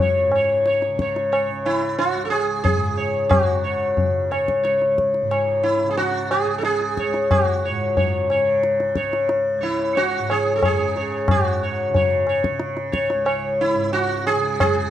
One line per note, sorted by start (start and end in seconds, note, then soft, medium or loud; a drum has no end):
0.00 2.13 C#2 medium
0.00 0.26 G#2 medium
0.00 0.88 C#3 medium
0.00 0.28 F#4 medium
0.00 0.32 C#5 soft
0.26 2.75 G#2 medium
0.32 0.65 C#5 soft
0.32 tabla na medium
0.66 0.97 C#5 soft
0.66 tabla te medium
0.82 tabla te soft
0.88 1.50 C#3 medium
0.99 1.31 C#5 soft
0.99 tabla ke medium
1.16 tabla te medium
1.32 1.63 C#5 soft
1.32 tabla na medium
1.50 3.37 C#3 soft
1.66 1.97 E4 medium
1.66 tabla na medium
1.98 2.25 F#4 medium
1.98 tabla tin medium
2.14 4.60 C#2 soft
2.25 2.30 A4 medium
2.30 2.62 G#4 medium
2.30 tabla na medium
2.64 3.29 G#4 medium
2.64 tabla tin medium
2.64 tabla ge medium
2.75 5.22 G#2 medium
2.97 3.29 C#5 soft
3.29 4.26 F#4 medium
3.29 tabla na medium
3.29 tabla ge medium
3.37 3.97 C#3 medium
3.64 3.95 C#5 soft
3.97 5.83 C#3 soft
3.97 tabla tin medium
3.97 tabla ge medium
4.31 4.62 C#5 soft
4.31 tabla na medium
4.48 tabla ke medium
4.60 7.06 C#2 medium
4.60 4.95 C#5 soft
4.65 tabla te medium
4.82 tabla te medium
4.98 tabla ke medium
5.14 tabla te medium
5.22 7.69 G#2 medium
5.31 5.62 C#5 soft
5.31 tabla na medium
5.63 5.90 E4 medium
5.83 6.47 C#3 medium
5.91 5.97 G#4 medium
5.97 6.31 F#4 medium
5.97 tabla tin medium
6.31 6.58 G#4 medium
6.31 tabla na medium
6.47 8.33 C#3 medium
6.58 6.64 A4 medium
6.63 7.31 G#4 medium
6.63 tabla te medium
6.81 tabla te medium
6.97 7.29 C#5 soft
6.97 tabla ke soft
7.07 9.56 C#2 medium
7.14 tabla te medium
7.31 8.26 F#4 medium
7.31 tabla na medium
7.31 tabla ge medium
7.65 10.19 G#2 medium
7.65 7.96 C#5 soft
7.97 8.28 C#5 soft
7.97 tabla tin medium
7.97 tabla ge medium
8.30 8.95 C#3 medium
8.30 8.62 C#5 soft
8.30 tabla na medium
8.63 tabla te medium
8.80 tabla te soft
8.95 10.77 C#3 soft
8.95 9.27 C#5 soft
8.95 tabla ke medium
9.13 tabla te medium
9.29 tabla te medium
9.56 13.13 C#2 medium
9.61 9.97 E4 medium
9.61 9.93 C#5 soft
9.61 tabla te medium
9.95 10.31 F#4 medium
9.95 10.26 C#5 soft
9.95 tabla tin medium
10.19 11.28 G#2 medium
10.30 10.55 G#4 medium
10.30 10.60 C#5 soft
10.30 tabla na medium
10.56 10.62 A4 medium
10.62 11.31 G#4 medium
10.62 10.93 C#5 soft
10.62 tabla na medium
10.62 tabla ge medium
10.77 11.89 C#3 medium
10.96 11.27 C#5 soft
10.96 tabla te medium
11.28 13.75 G#2 medium
11.28 12.25 F#4 medium
11.28 tabla na medium
11.28 tabla ge medium
11.63 11.93 C#5 soft
11.89 12.50 C#3 medium
11.95 12.26 C#5 soft
11.95 tabla tin medium
11.95 tabla ge medium
12.27 12.59 C#5 soft
12.27 tabla na medium
12.44 tabla ke medium
12.50 14.35 C#3 medium
12.60 tabla te medium
12.77 tabla te medium
12.92 13.24 C#5 soft
12.92 tabla ke medium
13.10 14.90 C#2 medium
13.10 tabla te medium
13.25 13.57 C#5 soft
13.25 tabla na medium
13.61 13.92 E4 medium
13.75 14.90 G#2 medium
13.92 14.26 F#4 medium
13.92 tabla tin medium
14.27 14.59 G#4 medium
14.27 tabla na medium
14.35 14.90 C#3 medium
14.60 14.90 G#4 loud
14.60 tabla na medium
14.60 tabla ge medium